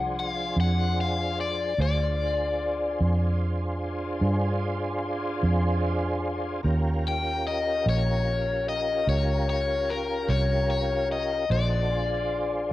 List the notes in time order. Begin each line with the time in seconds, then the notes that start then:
Already playing: C2 F3 D4 G#4 C5 F#5
0.20 F5
0.56 F2 F#5
1.01 F5
1.41 D5
1.78 D2 D4 F4 G#4 C5 D5
3.00 F2
4.21 G2
5.43 F2
6.63 D#2 C#4 F4 G4 A#4
7.08 G5
7.47 D#5
7.86 A#1 C#5
8.69 D#5
9.07 C#2 C#5
9.50 C#5
9.90 A#4
10.29 C2 C#5
10.71 C#5
11.12 D#5
11.50 A#1 D#4 F#4 A4 C5 D5
11.90 D4 F4 G#4 C5